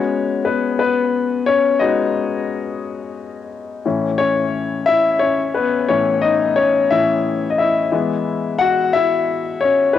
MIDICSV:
0, 0, Header, 1, 2, 480
1, 0, Start_track
1, 0, Tempo, 679502
1, 1280, Time_signature, 6, 3, 24, 8
1, 7056, End_track
2, 0, Start_track
2, 0, Title_t, "Grand piano"
2, 0, Program_c, 0, 0
2, 0, Control_c, 0, 64, 127
2, 0, Note_on_c, 0, 56, 47
2, 0, Note_on_c, 0, 59, 43
2, 0, Note_on_c, 0, 61, 58
2, 0, Note_on_c, 0, 66, 48
2, 0, Note_on_c, 0, 73, 70
2, 158, Note_off_c, 0, 56, 0
2, 159, Note_off_c, 0, 59, 0
2, 162, Note_off_c, 0, 66, 0
2, 295, Note_off_c, 0, 61, 0
2, 316, Note_on_c, 0, 71, 64
2, 324, Note_on_c, 0, 59, 50
2, 335, Note_off_c, 0, 73, 0
2, 540, Note_off_c, 0, 71, 0
2, 545, Note_off_c, 0, 59, 0
2, 558, Note_on_c, 0, 71, 74
2, 568, Note_on_c, 0, 59, 57
2, 1016, Note_off_c, 0, 59, 0
2, 1033, Note_on_c, 0, 73, 78
2, 1047, Note_on_c, 0, 61, 59
2, 1053, Note_off_c, 0, 71, 0
2, 1260, Note_off_c, 0, 73, 0
2, 1267, Note_off_c, 0, 61, 0
2, 1267, Note_on_c, 0, 75, 74
2, 1274, Note_on_c, 0, 56, 47
2, 1277, Note_on_c, 0, 59, 38
2, 1282, Note_on_c, 0, 66, 50
2, 1284, Note_on_c, 0, 63, 57
2, 1970, Note_off_c, 0, 56, 0
2, 1971, Note_off_c, 0, 59, 0
2, 1974, Note_off_c, 0, 66, 0
2, 2447, Note_off_c, 0, 75, 0
2, 2455, Note_off_c, 0, 63, 0
2, 2723, Note_on_c, 0, 45, 43
2, 2726, Note_on_c, 0, 52, 40
2, 2730, Control_c, 0, 64, 0
2, 2733, Note_on_c, 0, 61, 48
2, 2856, Control_c, 0, 64, 127
2, 2954, Note_on_c, 0, 73, 78
2, 2959, Note_off_c, 0, 61, 0
2, 2970, Note_on_c, 0, 61, 58
2, 3042, Note_off_c, 0, 45, 0
2, 3044, Note_off_c, 0, 52, 0
2, 3418, Note_off_c, 0, 61, 0
2, 3433, Note_on_c, 0, 76, 88
2, 3450, Note_on_c, 0, 64, 68
2, 3453, Note_off_c, 0, 73, 0
2, 3669, Note_on_c, 0, 73, 76
2, 3670, Note_off_c, 0, 64, 0
2, 3685, Note_off_c, 0, 76, 0
2, 3688, Note_on_c, 0, 61, 59
2, 3899, Note_off_c, 0, 73, 0
2, 3909, Note_off_c, 0, 61, 0
2, 3917, Note_on_c, 0, 71, 70
2, 3932, Note_on_c, 0, 59, 56
2, 4151, Note_off_c, 0, 59, 0
2, 4157, Note_on_c, 0, 73, 79
2, 4161, Note_on_c, 0, 45, 46
2, 4165, Note_on_c, 0, 52, 40
2, 4167, Note_off_c, 0, 71, 0
2, 4169, Note_on_c, 0, 61, 62
2, 4390, Note_off_c, 0, 61, 0
2, 4390, Note_on_c, 0, 75, 75
2, 4406, Note_on_c, 0, 63, 60
2, 4407, Note_off_c, 0, 73, 0
2, 4446, Note_off_c, 0, 75, 0
2, 4459, Note_off_c, 0, 63, 0
2, 4632, Note_on_c, 0, 73, 74
2, 4646, Note_on_c, 0, 61, 58
2, 4868, Note_off_c, 0, 61, 0
2, 4871, Note_off_c, 0, 45, 0
2, 4874, Note_off_c, 0, 52, 0
2, 4878, Note_on_c, 0, 76, 82
2, 4881, Note_on_c, 0, 45, 41
2, 4885, Note_off_c, 0, 73, 0
2, 4885, Note_on_c, 0, 52, 39
2, 4888, Note_on_c, 0, 61, 47
2, 4889, Note_on_c, 0, 64, 63
2, 5098, Note_off_c, 0, 45, 0
2, 5100, Note_off_c, 0, 52, 0
2, 5102, Note_off_c, 0, 61, 0
2, 5288, Note_off_c, 0, 64, 0
2, 5300, Note_on_c, 0, 75, 58
2, 5323, Note_off_c, 0, 76, 0
2, 5356, Note_off_c, 0, 75, 0
2, 5356, Note_on_c, 0, 76, 75
2, 5367, Note_on_c, 0, 64, 60
2, 5594, Note_on_c, 0, 52, 46
2, 5599, Note_on_c, 0, 56, 43
2, 5603, Note_on_c, 0, 59, 50
2, 5610, Control_c, 0, 64, 0
2, 5720, Control_c, 0, 64, 127
2, 5811, Note_off_c, 0, 76, 0
2, 5816, Note_off_c, 0, 64, 0
2, 5917, Note_off_c, 0, 52, 0
2, 5919, Note_off_c, 0, 56, 0
2, 5921, Note_off_c, 0, 59, 0
2, 6064, Note_on_c, 0, 78, 84
2, 6083, Note_on_c, 0, 66, 70
2, 6305, Note_off_c, 0, 66, 0
2, 6309, Note_on_c, 0, 76, 92
2, 6320, Note_off_c, 0, 78, 0
2, 6328, Note_on_c, 0, 64, 65
2, 6766, Note_off_c, 0, 76, 0
2, 6776, Note_off_c, 0, 64, 0
2, 6785, Note_on_c, 0, 73, 75
2, 6811, Note_on_c, 0, 61, 59
2, 6841, Note_off_c, 0, 73, 0
2, 6864, Note_off_c, 0, 61, 0
2, 7015, Note_on_c, 0, 71, 68
2, 7031, Note_on_c, 0, 52, 47
2, 7056, Note_off_c, 0, 52, 0
2, 7056, Note_off_c, 0, 71, 0
2, 7056, End_track
0, 0, End_of_file